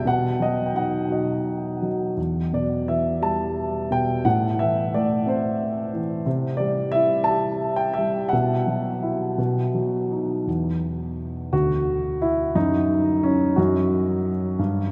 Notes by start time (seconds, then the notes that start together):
0.05 B2 F#5
0.40 F#3 D#5
0.66 G5
0.74 D#4 F#5
1.10 F#4 D#5
1.82 F#3
2.17 E2
2.53 B2 D5
2.88 E3 E5
3.22 G3 A5
3.91 B2 G5
4.25 A2 F#5
4.59 E3 E5
4.94 A3 D5
5.26 C4 C5
5.93 E3
6.26 C3
6.57 G3 D5
6.92 E4 E5
7.24 A5
7.30 G4
7.76 G5
7.94 E5
7.98 G3
8.29 F#5
8.33 B2
8.67 F#3
9.03 E4
9.38 B2
9.74 F#3
10.11 D#4
10.47 E2
11.53 D2 F#4
12.22 E4
12.55 F#2 D#4
13.23 C#4
13.56 F#2 F#4
14.59 G2